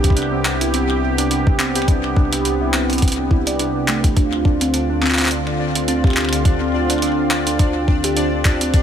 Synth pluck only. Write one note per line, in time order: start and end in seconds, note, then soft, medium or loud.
0.17 0.30 D4 loud
0.33 0.43 C4 medium
0.61 0.67 E4 medium
0.74 0.87 C4 medium
0.90 1.00 C4 medium
1.18 1.30 D4 medium
1.31 1.46 D4 medium
1.59 1.73 C4 medium
1.75 1.87 G4 medium
1.88 2.01 D4 medium
2.17 2.30 D4 loud
2.33 2.43 C4 medium
2.61 2.67 E4 medium
2.74 2.87 C4 medium
2.90 3.00 C4 medium
3.18 3.30 D4 medium
3.31 3.46 E4 medium
3.47 3.57 D5 medium
3.60 3.73 D4 medium
3.76 3.87 D4 medium
3.88 3.96 A3 medium
4.17 4.30 D4 medium
4.45 4.58 D4 loud
4.61 4.71 C4 medium
4.90 5.00 D4 loud
5.02 5.15 C4 medium
5.18 5.29 C4 medium
5.47 5.58 D4 medium
5.60 5.75 D4 medium
5.88 6.01 C4 medium
6.04 6.16 G4 medium
6.17 6.30 D4 medium
6.45 6.58 D4 loud
6.61 6.71 C4 medium
6.90 7.00 D4 loud
7.02 7.15 C4 medium
7.18 7.29 C4 medium
7.47 7.58 D4 medium
7.59 7.75 D4 medium
7.88 8.01 C4 medium
8.04 8.16 G4 medium
8.17 8.30 D4 medium
8.45 8.58 D4 loud
8.61 8.71 C4 medium